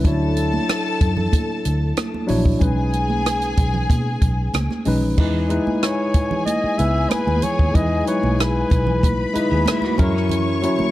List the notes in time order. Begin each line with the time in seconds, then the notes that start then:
0.04 D2 F#3 D4 E4 A4 C#5 A5, kick, closed hi-hat
0.37 closed hi-hat
0.53 high conga
0.69 cross-stick, closed hi-hat, muted conga
1.01 F#2, kick, closed hi-hat, muted conga
1.17 low conga
1.32 kick, closed hi-hat, high conga
1.65 D2, closed hi-hat, muted conga
1.97 cross-stick, closed hi-hat, high conga
2.14 high conga
2.27 A#1 F#3 D4 E4 C#5, open hi-hat, low conga
2.46 kick
2.59 B1 G#3 C#4 D#4 G#4 B4 G#5, kick, closed hi-hat, low conga
2.93 closed hi-hat, muted conga
3.10 high conga
3.26 cross-stick, closed hi-hat
3.42 closed hi-hat
3.57 B1, kick, closed hi-hat, muted conga
3.74 low conga
3.90 B2, kick, closed hi-hat, high conga
4.22 B1, kick, closed hi-hat
4.54 C#2, cross-stick, closed hi-hat, high conga
4.71 cross-stick, high conga
4.85 B1 G#3 C#4 D#4 B4, open hi-hat, muted conga, low conga
5.03 A#1
5.18 E2 G#3 D#4 E4 G#4 B4 G#5, kick, crash, low conga
5.49 G#3 D#4 E4 B4, closed hi-hat, muted conga
5.67 muted fingered electric bass stroke, high conga
5.83 C#5, cross-stick, closed hi-hat, muted conga
6.14 kick, closed hi-hat, muted conga
6.31 low conga
6.45 D#5, closed hi-hat, muted conga, high conga
6.64 muted fingered electric bass stroke
6.78 C#2 G#3 B3 E4 B4 E5, closed hi-hat
7.10 B4, cross-stick, closed hi-hat, muted conga, high conga
7.27 D#2, high conga
7.42 C#5, closed hi-hat, muted conga, low conga
7.59 D#2, kick
7.73 E2 G#3 D#4 E4 B4 D#5, kick, closed hi-hat, low conga
8.05 F#3 D#4 E4 B4 C#5, closed hi-hat
8.12 G#3
8.23 B1, high conga
8.39 B4, cross-stick, closed hi-hat, muted conga
8.70 B1, kick, closed hi-hat, muted conga
8.87 low conga
9.01 B4 B5, kick, closed hi-hat, high conga
9.33 G#3 D#4 E4 B4, muted fingered electric bass stroke, closed hi-hat
9.51 D#2 B3 G#4
9.66 G#3 E4, cross-stick, closed hi-hat, muted conga, high conga
9.82 A#3 F#4, cross-stick, high conga
9.98 F#2 F#3 G#3 C#4 E4 A#4 C#5 C#6, kick, closed hi-hat, muted conga, low conga
10.15 E3 C#4, cross-stick
10.29 closed hi-hat, low conga
10.62 F#3 C#4 E4 C#5, closed hi-hat, muted conga
10.79 muted fingered electric bass stroke, high conga